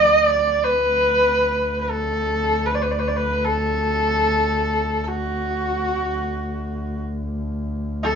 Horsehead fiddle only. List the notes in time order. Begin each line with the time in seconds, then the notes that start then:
Already playing: D5
0.63 B4
1.81 B4
1.90 A4
2.66 B4
2.75 D5
2.82 B4
2.91 D5
2.99 B4
3.08 D5
3.16 B4
3.45 A4
5.04 A4
5.08 F#4
8.03 A4